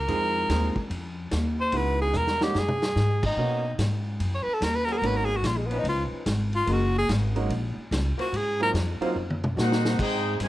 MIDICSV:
0, 0, Header, 1, 9, 480
1, 0, Start_track
1, 0, Tempo, 412655
1, 92, Time_signature, 4, 2, 24, 8
1, 12193, End_track
2, 0, Start_track
2, 0, Title_t, "Trumpet section"
2, 0, Program_c, 0, 61
2, 11155, Note_on_c, 0, 70, 90
2, 11157, Note_on_c, 0, 63, 87
2, 11163, Note_on_c, 0, 78, 100
2, 11169, Note_on_c, 0, 72, 90
2, 11592, Note_off_c, 0, 63, 0
2, 11592, Note_off_c, 0, 70, 0
2, 11596, Note_off_c, 0, 78, 0
2, 11599, Note_off_c, 0, 72, 0
2, 11635, Note_on_c, 0, 79, 111
2, 11638, Note_on_c, 0, 63, 91
2, 11638, Note_on_c, 0, 68, 91
2, 11640, Note_on_c, 0, 72, 97
2, 12072, Note_off_c, 0, 79, 0
2, 12073, Note_off_c, 0, 63, 0
2, 12073, Note_off_c, 0, 68, 0
2, 12074, Note_off_c, 0, 72, 0
2, 12124, Note_on_c, 0, 67, 95
2, 12124, Note_on_c, 0, 80, 117
2, 12126, Note_on_c, 0, 63, 97
2, 12126, Note_on_c, 0, 72, 97
2, 12193, Note_off_c, 0, 63, 0
2, 12193, Note_off_c, 0, 67, 0
2, 12193, Note_off_c, 0, 72, 0
2, 12193, Note_off_c, 0, 80, 0
2, 12193, End_track
3, 0, Start_track
3, 0, Title_t, "Tenor saxophone"
3, 0, Program_c, 1, 66
3, 0, Note_on_c, 1, 70, 110
3, 1018, Note_off_c, 1, 70, 0
3, 1869, Note_on_c, 1, 72, 104
3, 2062, Note_on_c, 1, 71, 94
3, 2080, Note_off_c, 1, 72, 0
3, 2339, Note_off_c, 1, 71, 0
3, 2346, Note_on_c, 1, 68, 107
3, 2528, Note_on_c, 1, 70, 111
3, 2545, Note_off_c, 1, 68, 0
3, 2833, Note_on_c, 1, 67, 98
3, 2850, Note_off_c, 1, 70, 0
3, 3018, Note_on_c, 1, 68, 103
3, 3035, Note_off_c, 1, 67, 0
3, 3785, Note_off_c, 1, 68, 0
3, 3796, Note_on_c, 1, 63, 98
3, 4384, Note_off_c, 1, 63, 0
3, 5057, Note_on_c, 1, 73, 89
3, 5151, Note_on_c, 1, 71, 113
3, 5169, Note_off_c, 1, 73, 0
3, 5280, Note_on_c, 1, 69, 99
3, 5298, Note_off_c, 1, 71, 0
3, 5403, Note_on_c, 1, 70, 96
3, 5421, Note_off_c, 1, 69, 0
3, 5526, Note_on_c, 1, 71, 111
3, 5544, Note_off_c, 1, 70, 0
3, 5636, Note_on_c, 1, 70, 107
3, 5653, Note_off_c, 1, 71, 0
3, 5728, Note_on_c, 1, 68, 90
3, 5745, Note_off_c, 1, 70, 0
3, 5797, Note_on_c, 1, 70, 102
3, 5815, Note_off_c, 1, 68, 0
3, 5883, Note_on_c, 1, 71, 101
3, 5901, Note_off_c, 1, 70, 0
3, 6010, Note_on_c, 1, 70, 92
3, 6027, Note_off_c, 1, 71, 0
3, 6110, Note_on_c, 1, 68, 105
3, 6128, Note_off_c, 1, 70, 0
3, 6243, Note_on_c, 1, 66, 92
3, 6260, Note_off_c, 1, 68, 0
3, 6352, Note_on_c, 1, 65, 93
3, 6369, Note_off_c, 1, 66, 0
3, 6484, Note_on_c, 1, 56, 65
3, 6501, Note_off_c, 1, 65, 0
3, 6589, Note_on_c, 1, 59, 92
3, 6607, Note_off_c, 1, 56, 0
3, 6733, Note_on_c, 1, 63, 98
3, 6751, Note_off_c, 1, 59, 0
3, 6814, Note_off_c, 1, 63, 0
3, 6847, Note_on_c, 1, 65, 94
3, 7023, Note_off_c, 1, 65, 0
3, 7626, Note_on_c, 1, 65, 104
3, 7820, Note_on_c, 1, 66, 94
3, 7837, Note_off_c, 1, 65, 0
3, 8107, Note_off_c, 1, 66, 0
3, 8122, Note_on_c, 1, 68, 116
3, 8261, Note_off_c, 1, 68, 0
3, 9542, Note_on_c, 1, 66, 106
3, 9733, Note_on_c, 1, 68, 105
3, 9751, Note_off_c, 1, 66, 0
3, 10024, Note_off_c, 1, 68, 0
3, 10034, Note_on_c, 1, 70, 117
3, 10126, Note_off_c, 1, 70, 0
3, 12193, End_track
4, 0, Start_track
4, 0, Title_t, "Trombone section"
4, 0, Program_c, 2, 61
4, 5667, Note_on_c, 2, 54, 101
4, 5672, Note_on_c, 2, 70, 119
4, 5674, Note_on_c, 2, 59, 96
4, 5674, Note_on_c, 2, 61, 91
4, 6290, Note_off_c, 2, 54, 0
4, 6292, Note_off_c, 2, 70, 0
4, 6293, Note_off_c, 2, 59, 0
4, 6293, Note_off_c, 2, 61, 0
4, 6634, Note_on_c, 2, 71, 110
4, 6641, Note_on_c, 2, 53, 100
4, 6641, Note_on_c, 2, 61, 88
4, 6650, Note_on_c, 2, 63, 93
4, 7254, Note_off_c, 2, 71, 0
4, 7257, Note_off_c, 2, 53, 0
4, 7257, Note_off_c, 2, 61, 0
4, 7261, Note_off_c, 2, 63, 0
4, 7754, Note_on_c, 2, 66, 84
4, 7755, Note_on_c, 2, 70, 102
4, 7762, Note_on_c, 2, 63, 80
4, 7768, Note_on_c, 2, 56, 88
4, 7971, Note_off_c, 2, 66, 0
4, 7972, Note_off_c, 2, 70, 0
4, 7976, Note_off_c, 2, 63, 0
4, 7980, Note_off_c, 2, 56, 0
4, 9506, Note_on_c, 2, 72, 114
4, 9507, Note_on_c, 2, 66, 96
4, 9508, Note_on_c, 2, 58, 102
4, 9512, Note_on_c, 2, 65, 97
4, 9627, Note_off_c, 2, 66, 0
4, 9627, Note_off_c, 2, 72, 0
4, 9628, Note_off_c, 2, 58, 0
4, 9630, Note_off_c, 2, 65, 0
4, 10482, Note_on_c, 2, 72, 124
4, 10487, Note_on_c, 2, 65, 99
4, 10487, Note_on_c, 2, 66, 91
4, 10491, Note_on_c, 2, 58, 105
4, 10597, Note_off_c, 2, 72, 0
4, 10600, Note_off_c, 2, 65, 0
4, 10600, Note_off_c, 2, 66, 0
4, 10602, Note_off_c, 2, 58, 0
4, 12193, End_track
5, 0, Start_track
5, 0, Title_t, "Grand piano"
5, 0, Program_c, 3, 0
5, 91, Note_on_c, 3, 56, 73
5, 98, Note_on_c, 3, 63, 71
5, 99, Note_on_c, 3, 60, 62
5, 106, Note_on_c, 3, 65, 65
5, 107, Note_on_c, 3, 68, 79
5, 554, Note_off_c, 3, 56, 0
5, 558, Note_off_c, 3, 60, 0
5, 558, Note_off_c, 3, 63, 0
5, 561, Note_off_c, 3, 65, 0
5, 562, Note_off_c, 3, 68, 0
5, 576, Note_on_c, 3, 56, 68
5, 579, Note_on_c, 3, 63, 62
5, 580, Note_on_c, 3, 60, 63
5, 584, Note_on_c, 3, 65, 61
5, 585, Note_on_c, 3, 68, 75
5, 854, Note_off_c, 3, 56, 0
5, 855, Note_off_c, 3, 60, 0
5, 855, Note_off_c, 3, 63, 0
5, 858, Note_off_c, 3, 65, 0
5, 858, Note_off_c, 3, 68, 0
5, 2013, Note_on_c, 3, 56, 66
5, 2016, Note_on_c, 3, 63, 62
5, 2017, Note_on_c, 3, 59, 60
5, 2023, Note_on_c, 3, 64, 63
5, 2028, Note_on_c, 3, 66, 72
5, 2740, Note_off_c, 3, 56, 0
5, 2742, Note_off_c, 3, 59, 0
5, 2742, Note_off_c, 3, 63, 0
5, 2746, Note_off_c, 3, 64, 0
5, 2748, Note_off_c, 3, 66, 0
5, 2805, Note_on_c, 3, 56, 72
5, 2808, Note_on_c, 3, 58, 67
5, 2812, Note_on_c, 3, 63, 70
5, 2814, Note_on_c, 3, 61, 68
5, 2817, Note_on_c, 3, 66, 81
5, 2956, Note_off_c, 3, 56, 0
5, 2957, Note_off_c, 3, 58, 0
5, 2959, Note_off_c, 3, 63, 0
5, 2960, Note_off_c, 3, 61, 0
5, 2961, Note_off_c, 3, 66, 0
5, 3930, Note_on_c, 3, 58, 65
5, 3937, Note_on_c, 3, 59, 59
5, 3938, Note_on_c, 3, 61, 61
5, 3938, Note_on_c, 3, 66, 69
5, 3940, Note_on_c, 3, 63, 58
5, 4211, Note_off_c, 3, 58, 0
5, 4214, Note_off_c, 3, 59, 0
5, 4214, Note_off_c, 3, 61, 0
5, 4214, Note_off_c, 3, 66, 0
5, 4215, Note_off_c, 3, 63, 0
5, 5849, Note_on_c, 3, 58, 62
5, 5855, Note_on_c, 3, 59, 55
5, 5855, Note_on_c, 3, 61, 60
5, 5860, Note_on_c, 3, 63, 57
5, 5862, Note_on_c, 3, 66, 70
5, 6130, Note_off_c, 3, 58, 0
5, 6133, Note_off_c, 3, 59, 0
5, 6133, Note_off_c, 3, 61, 0
5, 6136, Note_off_c, 3, 63, 0
5, 6136, Note_off_c, 3, 66, 0
5, 8556, Note_on_c, 3, 56, 73
5, 8558, Note_on_c, 3, 58, 69
5, 8563, Note_on_c, 3, 61, 73
5, 8564, Note_on_c, 3, 63, 69
5, 8571, Note_on_c, 3, 66, 83
5, 8712, Note_off_c, 3, 56, 0
5, 8712, Note_off_c, 3, 58, 0
5, 8715, Note_off_c, 3, 61, 0
5, 8716, Note_off_c, 3, 63, 0
5, 8719, Note_off_c, 3, 66, 0
5, 10005, Note_on_c, 3, 54, 71
5, 10007, Note_on_c, 3, 58, 70
5, 10012, Note_on_c, 3, 60, 69
5, 10016, Note_on_c, 3, 63, 67
5, 10019, Note_on_c, 3, 65, 81
5, 10156, Note_off_c, 3, 54, 0
5, 10158, Note_off_c, 3, 58, 0
5, 10160, Note_off_c, 3, 60, 0
5, 10162, Note_off_c, 3, 63, 0
5, 10163, Note_off_c, 3, 65, 0
5, 10481, Note_on_c, 3, 54, 80
5, 10483, Note_on_c, 3, 58, 72
5, 10488, Note_on_c, 3, 65, 93
5, 10490, Note_on_c, 3, 60, 77
5, 10491, Note_on_c, 3, 63, 74
5, 10634, Note_off_c, 3, 54, 0
5, 10635, Note_off_c, 3, 58, 0
5, 10638, Note_off_c, 3, 65, 0
5, 10639, Note_off_c, 3, 60, 0
5, 10639, Note_off_c, 3, 63, 0
5, 12193, End_track
6, 0, Start_track
6, 0, Title_t, "Trombone section"
6, 0, Program_c, 4, 61
6, 11129, Note_on_c, 4, 63, 90
6, 11129, Note_on_c, 4, 66, 92
6, 11131, Note_on_c, 4, 60, 92
6, 11578, Note_off_c, 4, 63, 0
6, 11578, Note_off_c, 4, 66, 0
6, 11579, Note_off_c, 4, 60, 0
6, 11614, Note_on_c, 4, 63, 95
6, 11617, Note_on_c, 4, 60, 100
6, 11620, Note_on_c, 4, 68, 96
6, 12061, Note_off_c, 4, 63, 0
6, 12062, Note_off_c, 4, 60, 0
6, 12064, Note_off_c, 4, 68, 0
6, 12100, Note_on_c, 4, 56, 89
6, 12104, Note_on_c, 4, 51, 96
6, 12106, Note_on_c, 4, 48, 95
6, 12193, Note_off_c, 4, 48, 0
6, 12193, Note_off_c, 4, 51, 0
6, 12193, Note_off_c, 4, 56, 0
6, 12193, End_track
7, 0, Start_track
7, 0, Title_t, "Upright bass"
7, 0, Program_c, 5, 32
7, 89, Note_on_c, 5, 41, 95
7, 556, Note_off_c, 5, 41, 0
7, 571, Note_on_c, 5, 39, 98
7, 860, Note_off_c, 5, 39, 0
7, 1045, Note_on_c, 5, 41, 94
7, 1514, Note_off_c, 5, 41, 0
7, 1531, Note_on_c, 5, 39, 101
7, 1996, Note_off_c, 5, 39, 0
7, 2008, Note_on_c, 5, 37, 89
7, 2475, Note_off_c, 5, 37, 0
7, 2486, Note_on_c, 5, 40, 93
7, 2954, Note_off_c, 5, 40, 0
7, 2962, Note_on_c, 5, 42, 95
7, 3432, Note_off_c, 5, 42, 0
7, 3438, Note_on_c, 5, 44, 96
7, 3907, Note_off_c, 5, 44, 0
7, 3914, Note_on_c, 5, 47, 87
7, 4388, Note_off_c, 5, 47, 0
7, 4399, Note_on_c, 5, 44, 94
7, 4870, Note_off_c, 5, 44, 0
7, 4883, Note_on_c, 5, 42, 89
7, 5176, Note_off_c, 5, 42, 0
7, 5359, Note_on_c, 5, 39, 96
7, 5830, Note_off_c, 5, 39, 0
7, 5837, Note_on_c, 5, 32, 94
7, 6305, Note_off_c, 5, 32, 0
7, 6312, Note_on_c, 5, 34, 95
7, 6783, Note_off_c, 5, 34, 0
7, 6790, Note_on_c, 5, 37, 94
7, 7089, Note_off_c, 5, 37, 0
7, 7281, Note_on_c, 5, 32, 102
7, 7752, Note_off_c, 5, 32, 0
7, 7763, Note_on_c, 5, 30, 94
7, 8233, Note_off_c, 5, 30, 0
7, 8245, Note_on_c, 5, 32, 92
7, 8714, Note_off_c, 5, 32, 0
7, 8721, Note_on_c, 5, 34, 96
7, 9016, Note_off_c, 5, 34, 0
7, 9203, Note_on_c, 5, 37, 104
7, 9497, Note_off_c, 5, 37, 0
7, 9681, Note_on_c, 5, 44, 93
7, 10152, Note_off_c, 5, 44, 0
7, 10160, Note_on_c, 5, 41, 104
7, 10455, Note_off_c, 5, 41, 0
7, 10651, Note_on_c, 5, 42, 98
7, 11118, Note_off_c, 5, 42, 0
7, 11131, Note_on_c, 5, 46, 106
7, 11598, Note_off_c, 5, 46, 0
7, 11620, Note_on_c, 5, 44, 90
7, 12083, Note_off_c, 5, 44, 0
7, 12094, Note_on_c, 5, 43, 94
7, 12193, Note_off_c, 5, 43, 0
7, 12193, End_track
8, 0, Start_track
8, 0, Title_t, "Muted upright bass strokes"
8, 878, Note_on_c, 9, 29, 47
8, 994, Note_off_c, 9, 29, 0
8, 5192, Note_on_c, 9, 29, 42
8, 5309, Note_off_c, 9, 29, 0
8, 7109, Note_on_c, 9, 29, 44
8, 7225, Note_off_c, 9, 29, 0
8, 9037, Note_on_c, 9, 29, 43
8, 9153, Note_off_c, 9, 29, 0
8, 9516, Note_on_c, 9, 29, 46
8, 9633, Note_off_c, 9, 29, 0
8, 10476, Note_on_c, 9, 29, 47
8, 10592, Note_off_c, 9, 29, 0
8, 12193, End_track
9, 0, Start_track
9, 0, Title_t, "Drums"
9, 96, Note_on_c, 9, 51, 70
9, 213, Note_off_c, 9, 51, 0
9, 576, Note_on_c, 9, 44, 65
9, 576, Note_on_c, 9, 51, 84
9, 578, Note_on_c, 9, 38, 75
9, 693, Note_off_c, 9, 44, 0
9, 693, Note_off_c, 9, 51, 0
9, 694, Note_off_c, 9, 38, 0
9, 881, Note_on_c, 9, 36, 64
9, 998, Note_off_c, 9, 36, 0
9, 1053, Note_on_c, 9, 51, 69
9, 1170, Note_off_c, 9, 51, 0
9, 1526, Note_on_c, 9, 44, 69
9, 1526, Note_on_c, 9, 51, 74
9, 1527, Note_on_c, 9, 38, 82
9, 1642, Note_off_c, 9, 44, 0
9, 1642, Note_off_c, 9, 51, 0
9, 1643, Note_off_c, 9, 38, 0
9, 2002, Note_on_c, 9, 51, 76
9, 2118, Note_off_c, 9, 51, 0
9, 2480, Note_on_c, 9, 44, 71
9, 2481, Note_on_c, 9, 47, 55
9, 2596, Note_off_c, 9, 44, 0
9, 2598, Note_off_c, 9, 47, 0
9, 2641, Note_on_c, 9, 38, 62
9, 2757, Note_off_c, 9, 38, 0
9, 2803, Note_on_c, 9, 38, 81
9, 2920, Note_off_c, 9, 38, 0
9, 2962, Note_on_c, 9, 38, 79
9, 3079, Note_off_c, 9, 38, 0
9, 3121, Note_on_c, 9, 47, 79
9, 3237, Note_off_c, 9, 47, 0
9, 3283, Note_on_c, 9, 38, 105
9, 3399, Note_off_c, 9, 38, 0
9, 3443, Note_on_c, 9, 44, 55
9, 3444, Note_on_c, 9, 38, 65
9, 3559, Note_off_c, 9, 44, 0
9, 3560, Note_off_c, 9, 38, 0
9, 3757, Note_on_c, 9, 36, 80
9, 3757, Note_on_c, 9, 49, 86
9, 3873, Note_off_c, 9, 36, 0
9, 3873, Note_off_c, 9, 49, 0
9, 4405, Note_on_c, 9, 44, 73
9, 4405, Note_on_c, 9, 51, 80
9, 4406, Note_on_c, 9, 38, 80
9, 4521, Note_off_c, 9, 44, 0
9, 4521, Note_off_c, 9, 51, 0
9, 4522, Note_off_c, 9, 38, 0
9, 4885, Note_on_c, 9, 51, 75
9, 5001, Note_off_c, 9, 51, 0
9, 5370, Note_on_c, 9, 44, 71
9, 5370, Note_on_c, 9, 51, 86
9, 5371, Note_on_c, 9, 38, 83
9, 5486, Note_off_c, 9, 44, 0
9, 5486, Note_off_c, 9, 51, 0
9, 5487, Note_off_c, 9, 38, 0
9, 5680, Note_on_c, 9, 51, 57
9, 5796, Note_off_c, 9, 51, 0
9, 5854, Note_on_c, 9, 51, 70
9, 5971, Note_off_c, 9, 51, 0
9, 6324, Note_on_c, 9, 44, 73
9, 6324, Note_on_c, 9, 51, 82
9, 6325, Note_on_c, 9, 38, 83
9, 6440, Note_off_c, 9, 44, 0
9, 6440, Note_off_c, 9, 51, 0
9, 6441, Note_off_c, 9, 38, 0
9, 6638, Note_on_c, 9, 51, 54
9, 6754, Note_off_c, 9, 51, 0
9, 6802, Note_on_c, 9, 51, 72
9, 6918, Note_off_c, 9, 51, 0
9, 7281, Note_on_c, 9, 44, 70
9, 7281, Note_on_c, 9, 51, 81
9, 7283, Note_on_c, 9, 38, 85
9, 7398, Note_off_c, 9, 44, 0
9, 7398, Note_off_c, 9, 51, 0
9, 7399, Note_off_c, 9, 38, 0
9, 7592, Note_on_c, 9, 51, 52
9, 7709, Note_off_c, 9, 51, 0
9, 7761, Note_on_c, 9, 51, 73
9, 7877, Note_off_c, 9, 51, 0
9, 8248, Note_on_c, 9, 44, 73
9, 8248, Note_on_c, 9, 51, 84
9, 8249, Note_on_c, 9, 38, 83
9, 8364, Note_off_c, 9, 44, 0
9, 8364, Note_off_c, 9, 51, 0
9, 8365, Note_off_c, 9, 38, 0
9, 8559, Note_on_c, 9, 51, 57
9, 8675, Note_off_c, 9, 51, 0
9, 8727, Note_on_c, 9, 51, 68
9, 8843, Note_off_c, 9, 51, 0
9, 9215, Note_on_c, 9, 44, 60
9, 9215, Note_on_c, 9, 51, 85
9, 9216, Note_on_c, 9, 38, 88
9, 9331, Note_off_c, 9, 44, 0
9, 9331, Note_off_c, 9, 51, 0
9, 9332, Note_off_c, 9, 38, 0
9, 9526, Note_on_c, 9, 51, 57
9, 9642, Note_off_c, 9, 51, 0
9, 9697, Note_on_c, 9, 51, 79
9, 9814, Note_off_c, 9, 51, 0
9, 10175, Note_on_c, 9, 44, 63
9, 10175, Note_on_c, 9, 51, 88
9, 10176, Note_on_c, 9, 38, 89
9, 10291, Note_off_c, 9, 44, 0
9, 10291, Note_off_c, 9, 51, 0
9, 10292, Note_off_c, 9, 38, 0
9, 10488, Note_on_c, 9, 51, 57
9, 10605, Note_off_c, 9, 51, 0
9, 10821, Note_on_c, 9, 48, 67
9, 10937, Note_off_c, 9, 48, 0
9, 10978, Note_on_c, 9, 47, 88
9, 11094, Note_off_c, 9, 47, 0
9, 11144, Note_on_c, 9, 44, 57
9, 11145, Note_on_c, 9, 38, 85
9, 11260, Note_off_c, 9, 44, 0
9, 11261, Note_off_c, 9, 38, 0
9, 11306, Note_on_c, 9, 38, 91
9, 11423, Note_off_c, 9, 38, 0
9, 11458, Note_on_c, 9, 38, 108
9, 11574, Note_off_c, 9, 38, 0
9, 11622, Note_on_c, 9, 36, 86
9, 11626, Note_on_c, 9, 49, 91
9, 11738, Note_off_c, 9, 36, 0
9, 11743, Note_off_c, 9, 49, 0
9, 12096, Note_on_c, 9, 44, 68
9, 12096, Note_on_c, 9, 51, 89
9, 12193, Note_off_c, 9, 44, 0
9, 12193, Note_off_c, 9, 51, 0
9, 12193, End_track
0, 0, End_of_file